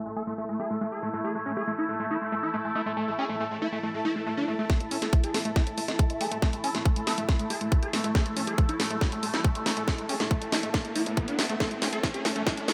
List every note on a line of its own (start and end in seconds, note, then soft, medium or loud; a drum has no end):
0.00 4.68 A3 medium
0.00 4.68 E4 medium
0.00 12.73 E4 loud
0.00 12.73 A4 medium
0.00 12.73 A5 medium
0.06 0.11 A3 medium
0.16 0.23 A3 medium
0.16 0.22 A4 loud
0.27 0.33 A3 medium
0.27 0.34 A3 loud
0.38 0.44 A3 medium
0.49 0.55 A3 medium
0.60 0.62 A3 medium
0.60 0.65 G#4 loud
0.70 0.76 A3 medium
0.81 0.84 A3 medium
0.81 0.87 A3 medium
0.92 0.98 G#4 medium
1.03 1.09 A3 loud
1.03 1.09 A3 medium
1.14 1.20 A3 loud
1.14 1.19 A3 medium
1.24 1.37 A3 loud
1.24 1.30 G#4 loud
1.35 1.38 G#3 medium
1.35 1.41 A3 medium
1.46 1.52 A3 medium
1.46 1.52 C#4 loud
1.57 1.63 A3 medium
1.57 1.63 G#4 medium
1.67 1.72 A3 medium
1.67 1.73 A3 medium
1.78 1.84 E4 medium
1.89 1.95 A3 medium
2.00 2.06 A3 medium
2.00 2.06 A3 loud
2.11 2.17 A3 medium
2.11 2.17 E4 medium
2.21 2.27 A3 medium
2.32 2.38 A3 medium
2.32 2.35 A3 medium
2.43 2.49 E4 medium
2.54 2.60 A3 medium
2.54 2.56 A3 medium
2.65 2.70 A3 medium
2.75 2.82 A3 loud
2.75 2.81 E4 medium
2.86 2.92 A3 medium
2.86 2.93 A3 loud
2.97 3.09 A3 loud
2.97 3.03 A3 medium
3.08 3.10 G#3 medium
3.08 3.14 A3 medium
3.19 3.25 C#4 loud
3.19 3.24 G#4 medium
3.29 3.36 A3 medium
3.29 3.35 A3 medium
3.40 3.46 A3 medium
3.40 3.44 A3 medium
3.51 3.57 A3 medium
3.62 3.68 A3 medium
3.62 3.68 E4 medium
3.73 3.79 A3 loud
3.73 3.78 A3 medium
3.83 3.90 A3 medium
3.83 3.89 A3 medium
3.83 swell medium
3.94 4.00 A3 medium
4.05 4.07 A3 medium
4.05 4.11 E4 loud
4.16 4.22 A3 medium
4.26 4.29 A3 medium
4.26 4.32 A3 medium
4.37 4.43 D4 loud
4.48 4.54 A3 medium
4.48 4.54 A3 loud
4.59 4.65 A3 loud
4.59 4.65 A3 medium
4.70 4.82 A3 loud
4.70 12.73 A3 medium
4.70 11.62 E4 medium
4.70 4.75 A4 loud
4.70 kick loud
4.70 snare soft
4.70 closed hi-hat medium
4.70 riser medium
4.80 4.86 A1 medium
4.80 4.83 G#3 medium
4.80 4.86 A3 medium
4.80 closed hi-hat medium
4.91 4.97 A1 loud
4.91 4.97 A3 medium
4.91 4.98 C#4 loud
4.91 open hi-hat loud
5.02 5.08 A1 medium
5.02 5.08 A3 medium
5.02 5.08 A4 medium
5.02 snare soft
5.02 closed hi-hat medium
5.13 5.17 A3 medium
5.13 5.19 A3 medium
5.13 kick loud
5.13 closed hi-hat medium
5.24 5.30 A1 medium
5.24 5.29 G#4 loud
5.24 closed hi-hat medium
5.34 5.40 A3 medium
5.34 5.41 A3 medium
5.34 snare soft
5.34 open hi-hat loud
5.45 5.51 A1 medium
5.45 5.52 A3 loud
5.45 5.51 A3 medium
5.45 closed hi-hat medium
5.56 5.62 A3 medium
5.56 5.62 E4 medium
5.56 kick loud
5.56 snare soft
5.56 closed hi-hat medium
5.67 5.73 A2 medium
5.67 5.73 A3 medium
5.67 closed hi-hat medium
5.78 5.84 A1 loud
5.78 5.80 A3 medium
5.78 5.83 A3 medium
5.78 open hi-hat loud
5.88 5.94 A1 medium
5.88 5.94 E4 medium
5.88 snare soft
5.88 closed hi-hat medium
5.99 6.02 A3 medium
5.99 6.05 A3 medium
5.99 kick loud
5.99 closed hi-hat medium
6.10 6.16 A1 medium
6.10 6.16 A3 medium
6.10 closed hi-hat medium
6.21 6.27 A1 loud
6.21 6.27 A3 loud
6.21 6.27 G#4 medium
6.21 open hi-hat loud
6.32 6.38 A1 medium
6.32 6.38 A3 loud
6.32 6.37 A3 medium
6.32 closed hi-hat medium
6.42 6.55 A3 loud
6.42 6.48 A3 medium
6.42 kick loud
6.42 snare medium
6.42 closed hi-hat medium
6.53 6.59 A1 medium
6.53 6.56 G#3 medium
6.53 6.59 A3 medium
6.53 closed hi-hat medium
6.64 6.70 A1 loud
6.64 6.70 C#4 loud
6.64 6.70 A4 loud
6.64 open hi-hat loud
6.75 6.81 A1 medium
6.75 6.81 A3 medium
6.75 snare soft
6.75 closed hi-hat medium
6.85 6.90 A3 medium
6.85 6.91 A3 medium
6.85 kick loud
6.85 closed hi-hat medium
6.96 7.02 A1 medium
6.96 7.02 A3 medium
6.96 closed hi-hat medium
7.07 7.13 A1 medium
7.07 7.13 A3 medium
7.07 7.13 A4 loud
7.07 snare medium
7.07 open hi-hat loud
7.18 7.24 A1 medium
7.18 7.24 A3 loud
7.18 7.24 A3 medium
7.18 closed hi-hat medium
7.29 7.35 A3 medium
7.29 kick loud
7.29 snare medium
7.29 closed hi-hat medium
7.39 7.45 A2 medium
7.39 7.45 A3 medium
7.39 closed hi-hat medium
7.50 7.56 A1 loud
7.50 7.53 A3 medium
7.50 7.56 G#4 medium
7.50 open hi-hat loud
7.61 7.67 A1 medium
7.61 7.67 A3 medium
7.61 closed hi-hat medium
7.72 7.78 A3 medium
7.72 7.74 A3 medium
7.72 kick loud
7.72 closed hi-hat medium
7.83 7.89 A1 medium
7.83 7.88 G#4 medium
7.83 closed hi-hat medium
7.93 7.99 A3 medium
7.93 8.00 A3 loud
7.93 snare medium
7.93 open hi-hat loud
8.04 8.10 A1 medium
8.04 8.10 A3 medium
8.04 8.11 A3 loud
8.04 closed hi-hat medium
8.15 8.27 A3 loud
8.15 8.21 G#4 loud
8.15 kick loud
8.15 snare medium
8.15 closed hi-hat medium
8.26 8.32 A1 medium
8.26 8.28 G#3 medium
8.26 8.32 A3 medium
8.26 closed hi-hat medium
8.37 8.43 A1 loud
8.37 8.42 A3 medium
8.37 8.43 C#4 loud
8.37 open hi-hat loud
8.47 8.53 A1 medium
8.47 8.54 A3 medium
8.47 8.53 G#4 medium
8.47 closed hi-hat medium
8.58 8.62 A3 medium
8.58 8.64 A3 medium
8.58 kick loud
8.58 closed hi-hat medium
8.69 8.75 A1 medium
8.69 8.75 E4 loud
8.69 closed hi-hat medium
8.80 8.86 A3 medium
8.80 snare medium
8.80 open hi-hat loud
8.91 8.97 A1 loud
8.91 8.96 A3 medium
8.91 8.97 A3 loud
8.91 closed hi-hat medium
9.01 9.08 A3 medium
9.01 9.07 E4 medium
9.01 kick loud
9.01 snare medium
9.01 closed hi-hat medium
9.12 9.18 A2 medium
9.12 9.18 A3 medium
9.12 closed hi-hat medium
9.23 9.29 A1 loud
9.23 9.29 A3 medium
9.23 9.25 A3 medium
9.23 open hi-hat loud
9.34 9.40 A1 medium
9.34 9.40 E4 medium
9.34 snare medium
9.34 closed hi-hat medium
9.44 9.50 A3 medium
9.44 9.47 A3 medium
9.44 kick loud
9.44 closed hi-hat medium
9.55 9.61 A1 medium
9.55 9.61 A3 medium
9.55 closed hi-hat medium
9.66 9.72 A1 loud
9.66 9.72 A3 loud
9.66 9.72 E4 medium
9.66 snare medium
9.66 open hi-hat loud
9.77 9.83 A1 medium
9.77 9.83 A3 medium
9.77 9.83 A3 loud
9.77 closed hi-hat medium
9.88 9.93 A3 medium
9.88 10.00 A3 loud
9.88 kick loud
9.88 snare medium
9.88 closed hi-hat medium
9.98 10.04 A1 medium
9.98 10.01 G#3 medium
9.98 10.04 A3 medium
9.98 closed hi-hat medium
10.09 10.15 A1 loud
10.09 10.16 C#4 loud
10.09 10.15 G#4 medium
10.09 open hi-hat loud
10.20 10.26 A3 medium
10.20 snare medium
10.20 closed hi-hat medium
10.31 10.35 A3 medium
10.31 10.37 A3 medium
10.31 kick loud
10.31 closed hi-hat medium
10.42 10.48 A1 medium
10.42 10.47 A3 medium
10.42 closed hi-hat medium
10.52 10.59 A3 medium
10.52 10.58 E4 medium
10.52 snare medium
10.52 open hi-hat loud
10.63 10.69 A1 medium
10.63 10.70 A3 loud
10.63 10.69 A3 medium
10.63 closed hi-hat medium
10.74 10.80 A3 medium
10.74 kick loud
10.74 snare medium
10.74 closed hi-hat medium
10.85 10.91 A1 medium
10.85 10.91 A3 medium
10.85 closed hi-hat medium
10.96 11.02 A2 loud
10.96 10.98 A3 medium
10.96 11.01 E4 medium
10.96 open hi-hat loud
11.06 11.12 A2 medium
11.06 11.12 A3 medium
11.06 closed hi-hat medium
11.17 11.20 A3 medium
11.17 11.23 A3 medium
11.17 kick loud
11.17 closed hi-hat medium
11.28 11.34 A1 medium
11.28 11.34 D4 medium
11.28 closed hi-hat medium
11.39 11.45 A3 loud
11.39 11.45 A3 medium
11.39 snare medium
11.39 open hi-hat loud
11.49 11.56 A1 medium
11.49 11.56 A3 loud
11.49 11.55 A3 medium
11.49 closed hi-hat medium
11.60 11.73 A3 loud
11.60 12.73 C#4 medium
11.60 11.66 A4 loud
11.60 kick loud
11.60 snare medium
11.60 closed hi-hat medium
11.71 11.77 A1 medium
11.71 11.74 G#3 medium
11.71 11.77 A3 medium
11.71 closed hi-hat medium
11.82 11.88 A3 medium
11.82 11.88 C#4 loud
11.82 snare medium
11.82 open hi-hat loud
11.93 11.99 A1 medium
11.93 11.99 A3 medium
11.93 11.99 A4 medium
11.93 closed hi-hat medium
12.03 12.09 A3 medium
12.03 12.08 A3 medium
12.03 kick loud
12.03 snare medium
12.03 closed hi-hat medium
12.14 12.20 G#4 loud
12.14 closed hi-hat medium
12.25 12.31 A3 medium
12.25 snare medium
12.25 open hi-hat loud
12.36 12.42 A1 medium
12.36 12.42 A3 medium
12.36 12.42 A3 loud
12.36 closed hi-hat medium
12.47 12.53 A3 medium
12.47 12.52 E4 medium
12.47 kick loud
12.47 snare medium
12.47 closed hi-hat medium
12.57 12.63 A2 medium
12.57 12.63 A3 medium
12.57 closed hi-hat medium
12.68 12.73 A3 medium
12.68 12.71 A3 medium
12.68 snare medium
12.68 open hi-hat loud